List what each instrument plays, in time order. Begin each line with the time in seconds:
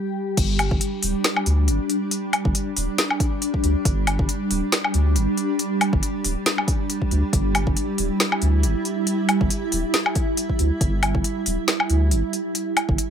Already playing: ambient pad G3 G4
0.37 sub bass G1, ambient pad G3 D4, kick, closed hi-hat, crash
0.59 closed hi-hat, low woodblock
0.71 sub bass G1, kick
0.81 closed hi-hat
1.03 sub bass D1, open hi-hat
1.24 snare, closed hi-hat
1.36 low woodblock
1.46 sub bass D2, closed hi-hat
1.68 sub bass G1, closed hi-hat
1.90 closed hi-hat
2.11 closed hi-hat
2.33 closed hi-hat, low woodblock
2.45 sub bass G1, kick
2.55 closed hi-hat
2.76 sub bass D1, open hi-hat
2.98 snare, closed hi-hat
3.10 low woodblock
3.20 kick, closed hi-hat
3.42 closed hi-hat
3.54 kick
3.64 sub bass D2, closed hi-hat
3.85 sub bass G1, kick, closed hi-hat
4.07 closed hi-hat, low woodblock
4.19 sub bass G1, kick
4.29 closed hi-hat
4.50 sub bass D1, open hi-hat
4.72 snare, closed hi-hat
4.84 low woodblock
4.94 sub bass D2, closed hi-hat
5.16 sub bass G1, closed hi-hat
5.37 closed hi-hat
5.59 closed hi-hat
5.81 closed hi-hat, low woodblock
5.93 sub bass G1, kick
6.03 closed hi-hat
6.24 sub bass D1, open hi-hat
6.46 snare, closed hi-hat
6.58 low woodblock
6.68 kick, closed hi-hat
6.90 closed hi-hat
7.02 kick
7.11 sub bass D2, closed hi-hat
7.33 sub bass G1, ambient pad E4, kick, closed hi-hat
7.55 closed hi-hat, low woodblock
7.67 sub bass G1, kick
7.77 closed hi-hat
7.98 sub bass D1, open hi-hat
8.20 snare, closed hi-hat
8.32 low woodblock
8.42 sub bass D2, closed hi-hat
8.63 sub bass G1, closed hi-hat
8.85 closed hi-hat
9.07 closed hi-hat
9.29 closed hi-hat, low woodblock
9.41 sub bass G1, kick
9.50 closed hi-hat
9.72 sub bass D1, open hi-hat
9.94 snare, closed hi-hat
10.06 low woodblock
10.15 kick, closed hi-hat
10.37 closed hi-hat
10.49 kick
10.59 sub bass D2, closed hi-hat
10.81 sub bass G1, kick, closed hi-hat
11.03 closed hi-hat, low woodblock
11.15 sub bass G1, kick
11.24 closed hi-hat
11.46 sub bass D1, open hi-hat
11.68 snare, closed hi-hat
11.80 low woodblock
11.90 sub bass D2, closed hi-hat
12.11 sub bass G1, closed hi-hat
12.33 closed hi-hat
12.55 closed hi-hat
12.77 closed hi-hat, low woodblock
12.89 sub bass G1, kick
12.98 closed hi-hat